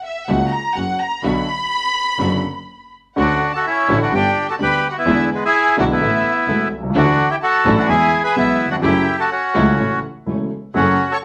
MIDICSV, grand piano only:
0, 0, Header, 1, 2, 480
1, 0, Start_track
1, 0, Key_signature, 2, "minor"
1, 0, Tempo, 480384
1, 1234, Time_signature, 4, 2, 24, 8
1, 3173, Key_signature, 2, "major"
1, 3652, Tempo, 470588
1, 8452, Tempo, 479616
1, 11338, End_track
2, 0, Start_track
2, 0, Title_t, "Grand piano"
2, 0, Program_c, 0, 0
2, 281, Note_on_c, 0, 49, 76
2, 284, Note_on_c, 0, 54, 61
2, 286, Note_on_c, 0, 37, 87
2, 287, Note_on_c, 0, 58, 60
2, 290, Note_on_c, 0, 66, 81
2, 482, Note_off_c, 0, 54, 0
2, 483, Note_off_c, 0, 37, 0
2, 483, Note_off_c, 0, 49, 0
2, 484, Note_off_c, 0, 58, 0
2, 486, Note_off_c, 0, 66, 0
2, 750, Note_on_c, 0, 42, 54
2, 757, Note_on_c, 0, 54, 51
2, 953, Note_off_c, 0, 42, 0
2, 957, Note_off_c, 0, 54, 0
2, 1228, Note_on_c, 0, 50, 72
2, 1231, Note_on_c, 0, 54, 68
2, 1232, Note_on_c, 0, 47, 82
2, 1233, Note_on_c, 0, 35, 90
2, 1237, Note_on_c, 0, 59, 65
2, 1239, Note_on_c, 0, 66, 78
2, 1432, Note_off_c, 0, 50, 0
2, 1434, Note_off_c, 0, 35, 0
2, 1434, Note_off_c, 0, 47, 0
2, 1434, Note_off_c, 0, 54, 0
2, 1436, Note_off_c, 0, 59, 0
2, 1437, Note_off_c, 0, 66, 0
2, 2182, Note_on_c, 0, 50, 69
2, 2188, Note_on_c, 0, 30, 76
2, 2188, Note_on_c, 0, 66, 69
2, 2190, Note_on_c, 0, 54, 60
2, 2190, Note_on_c, 0, 59, 60
2, 2192, Note_on_c, 0, 42, 78
2, 2392, Note_off_c, 0, 50, 0
2, 2395, Note_off_c, 0, 30, 0
2, 2395, Note_off_c, 0, 66, 0
2, 2396, Note_off_c, 0, 54, 0
2, 2396, Note_off_c, 0, 59, 0
2, 2397, Note_off_c, 0, 42, 0
2, 3158, Note_on_c, 0, 50, 89
2, 3159, Note_on_c, 0, 38, 88
2, 3163, Note_on_c, 0, 66, 86
2, 3166, Note_on_c, 0, 57, 71
2, 3166, Note_on_c, 0, 61, 65
2, 3368, Note_off_c, 0, 38, 0
2, 3368, Note_off_c, 0, 50, 0
2, 3370, Note_off_c, 0, 66, 0
2, 3372, Note_off_c, 0, 57, 0
2, 3372, Note_off_c, 0, 61, 0
2, 3885, Note_on_c, 0, 50, 71
2, 3885, Note_on_c, 0, 57, 66
2, 3885, Note_on_c, 0, 61, 65
2, 3888, Note_on_c, 0, 45, 82
2, 3889, Note_on_c, 0, 66, 78
2, 3890, Note_on_c, 0, 33, 87
2, 4094, Note_off_c, 0, 50, 0
2, 4094, Note_off_c, 0, 57, 0
2, 4094, Note_off_c, 0, 61, 0
2, 4096, Note_off_c, 0, 45, 0
2, 4096, Note_off_c, 0, 66, 0
2, 4097, Note_off_c, 0, 33, 0
2, 4125, Note_on_c, 0, 50, 50
2, 4128, Note_on_c, 0, 31, 56
2, 4128, Note_on_c, 0, 59, 44
2, 4130, Note_on_c, 0, 55, 44
2, 4133, Note_on_c, 0, 67, 51
2, 4134, Note_on_c, 0, 43, 56
2, 4335, Note_off_c, 0, 50, 0
2, 4337, Note_off_c, 0, 31, 0
2, 4337, Note_off_c, 0, 59, 0
2, 4338, Note_off_c, 0, 55, 0
2, 4339, Note_off_c, 0, 67, 0
2, 4340, Note_off_c, 0, 43, 0
2, 4603, Note_on_c, 0, 50, 57
2, 4604, Note_on_c, 0, 38, 57
2, 4606, Note_on_c, 0, 55, 42
2, 4609, Note_on_c, 0, 67, 54
2, 4611, Note_on_c, 0, 59, 46
2, 4814, Note_off_c, 0, 38, 0
2, 4815, Note_off_c, 0, 50, 0
2, 4815, Note_off_c, 0, 55, 0
2, 4817, Note_off_c, 0, 67, 0
2, 4818, Note_off_c, 0, 59, 0
2, 5085, Note_on_c, 0, 50, 78
2, 5085, Note_on_c, 0, 59, 76
2, 5091, Note_on_c, 0, 52, 93
2, 5091, Note_on_c, 0, 56, 72
2, 5092, Note_on_c, 0, 40, 92
2, 5094, Note_on_c, 0, 64, 83
2, 5296, Note_off_c, 0, 50, 0
2, 5296, Note_off_c, 0, 59, 0
2, 5299, Note_off_c, 0, 40, 0
2, 5299, Note_off_c, 0, 52, 0
2, 5299, Note_off_c, 0, 56, 0
2, 5300, Note_off_c, 0, 64, 0
2, 5805, Note_on_c, 0, 56, 64
2, 5807, Note_on_c, 0, 50, 79
2, 5809, Note_on_c, 0, 35, 88
2, 5811, Note_on_c, 0, 47, 83
2, 5812, Note_on_c, 0, 59, 70
2, 5812, Note_on_c, 0, 64, 78
2, 6012, Note_off_c, 0, 56, 0
2, 6013, Note_off_c, 0, 50, 0
2, 6014, Note_off_c, 0, 35, 0
2, 6015, Note_off_c, 0, 47, 0
2, 6016, Note_off_c, 0, 59, 0
2, 6016, Note_off_c, 0, 64, 0
2, 6051, Note_on_c, 0, 52, 50
2, 6052, Note_on_c, 0, 57, 44
2, 6054, Note_on_c, 0, 59, 46
2, 6055, Note_on_c, 0, 69, 56
2, 6056, Note_on_c, 0, 45, 59
2, 6058, Note_on_c, 0, 33, 61
2, 6253, Note_off_c, 0, 52, 0
2, 6253, Note_off_c, 0, 57, 0
2, 6255, Note_off_c, 0, 59, 0
2, 6255, Note_off_c, 0, 69, 0
2, 6256, Note_off_c, 0, 45, 0
2, 6257, Note_off_c, 0, 33, 0
2, 6537, Note_on_c, 0, 52, 50
2, 6538, Note_on_c, 0, 40, 60
2, 6539, Note_on_c, 0, 69, 58
2, 6540, Note_on_c, 0, 28, 60
2, 6540, Note_on_c, 0, 57, 48
2, 6544, Note_on_c, 0, 59, 50
2, 6735, Note_off_c, 0, 40, 0
2, 6735, Note_off_c, 0, 52, 0
2, 6736, Note_off_c, 0, 69, 0
2, 6737, Note_off_c, 0, 28, 0
2, 6737, Note_off_c, 0, 57, 0
2, 6739, Note_off_c, 0, 59, 0
2, 6837, Note_on_c, 0, 35, 58
2, 6889, Note_on_c, 0, 36, 67
2, 6894, Note_off_c, 0, 35, 0
2, 6950, Note_off_c, 0, 36, 0
2, 6958, Note_on_c, 0, 37, 79
2, 7014, Note_off_c, 0, 37, 0
2, 7017, Note_on_c, 0, 50, 98
2, 7019, Note_on_c, 0, 52, 82
2, 7021, Note_on_c, 0, 38, 101
2, 7023, Note_on_c, 0, 57, 75
2, 7025, Note_on_c, 0, 62, 74
2, 7025, Note_on_c, 0, 66, 91
2, 7215, Note_off_c, 0, 50, 0
2, 7216, Note_off_c, 0, 52, 0
2, 7217, Note_off_c, 0, 38, 0
2, 7218, Note_off_c, 0, 57, 0
2, 7219, Note_off_c, 0, 62, 0
2, 7219, Note_off_c, 0, 66, 0
2, 7730, Note_on_c, 0, 52, 73
2, 7732, Note_on_c, 0, 33, 90
2, 7733, Note_on_c, 0, 45, 97
2, 7735, Note_on_c, 0, 57, 68
2, 7735, Note_on_c, 0, 66, 92
2, 7738, Note_on_c, 0, 62, 74
2, 7932, Note_off_c, 0, 52, 0
2, 7933, Note_off_c, 0, 33, 0
2, 7934, Note_off_c, 0, 45, 0
2, 7935, Note_off_c, 0, 57, 0
2, 7935, Note_off_c, 0, 66, 0
2, 7936, Note_off_c, 0, 62, 0
2, 7969, Note_on_c, 0, 56, 49
2, 7971, Note_on_c, 0, 52, 67
2, 7972, Note_on_c, 0, 59, 50
2, 7973, Note_on_c, 0, 40, 66
2, 7978, Note_on_c, 0, 68, 55
2, 8172, Note_off_c, 0, 56, 0
2, 8173, Note_off_c, 0, 59, 0
2, 8174, Note_off_c, 0, 40, 0
2, 8174, Note_off_c, 0, 52, 0
2, 8176, Note_off_c, 0, 68, 0
2, 8454, Note_on_c, 0, 35, 61
2, 8454, Note_on_c, 0, 47, 62
2, 8454, Note_on_c, 0, 56, 45
2, 8455, Note_on_c, 0, 52, 51
2, 8455, Note_on_c, 0, 59, 47
2, 8458, Note_on_c, 0, 68, 59
2, 8652, Note_off_c, 0, 35, 0
2, 8652, Note_off_c, 0, 47, 0
2, 8652, Note_off_c, 0, 52, 0
2, 8652, Note_off_c, 0, 56, 0
2, 8652, Note_off_c, 0, 59, 0
2, 8654, Note_off_c, 0, 68, 0
2, 8747, Note_on_c, 0, 39, 54
2, 8807, Note_off_c, 0, 39, 0
2, 8811, Note_on_c, 0, 40, 64
2, 8858, Note_on_c, 0, 41, 82
2, 8868, Note_off_c, 0, 40, 0
2, 8911, Note_on_c, 0, 49, 83
2, 8912, Note_on_c, 0, 42, 96
2, 8912, Note_on_c, 0, 54, 93
2, 8914, Note_on_c, 0, 57, 75
2, 8917, Note_on_c, 0, 64, 92
2, 8922, Note_off_c, 0, 41, 0
2, 9119, Note_off_c, 0, 42, 0
2, 9119, Note_off_c, 0, 49, 0
2, 9119, Note_off_c, 0, 54, 0
2, 9120, Note_off_c, 0, 57, 0
2, 9121, Note_off_c, 0, 64, 0
2, 9632, Note_on_c, 0, 57, 71
2, 9633, Note_on_c, 0, 49, 82
2, 9635, Note_on_c, 0, 37, 82
2, 9636, Note_on_c, 0, 54, 67
2, 9638, Note_on_c, 0, 64, 81
2, 9839, Note_off_c, 0, 57, 0
2, 9841, Note_off_c, 0, 37, 0
2, 9841, Note_off_c, 0, 49, 0
2, 9841, Note_off_c, 0, 54, 0
2, 9842, Note_off_c, 0, 64, 0
2, 9879, Note_on_c, 0, 49, 47
2, 9882, Note_on_c, 0, 54, 44
2, 9884, Note_on_c, 0, 33, 52
2, 9885, Note_on_c, 0, 45, 54
2, 9886, Note_on_c, 0, 57, 44
2, 9890, Note_on_c, 0, 64, 54
2, 10084, Note_off_c, 0, 49, 0
2, 10086, Note_off_c, 0, 54, 0
2, 10087, Note_off_c, 0, 33, 0
2, 10087, Note_off_c, 0, 45, 0
2, 10088, Note_off_c, 0, 57, 0
2, 10090, Note_off_c, 0, 64, 0
2, 10354, Note_on_c, 0, 54, 44
2, 10356, Note_on_c, 0, 28, 54
2, 10357, Note_on_c, 0, 64, 51
2, 10358, Note_on_c, 0, 49, 49
2, 10358, Note_on_c, 0, 57, 41
2, 10362, Note_on_c, 0, 40, 50
2, 10563, Note_off_c, 0, 54, 0
2, 10565, Note_off_c, 0, 28, 0
2, 10565, Note_off_c, 0, 64, 0
2, 10566, Note_off_c, 0, 49, 0
2, 10566, Note_off_c, 0, 57, 0
2, 10568, Note_off_c, 0, 40, 0
2, 10833, Note_on_c, 0, 54, 87
2, 10834, Note_on_c, 0, 49, 77
2, 10835, Note_on_c, 0, 42, 91
2, 10836, Note_on_c, 0, 57, 72
2, 10837, Note_on_c, 0, 66, 83
2, 11045, Note_off_c, 0, 49, 0
2, 11045, Note_off_c, 0, 54, 0
2, 11046, Note_off_c, 0, 42, 0
2, 11046, Note_off_c, 0, 57, 0
2, 11047, Note_off_c, 0, 66, 0
2, 11338, End_track
0, 0, End_of_file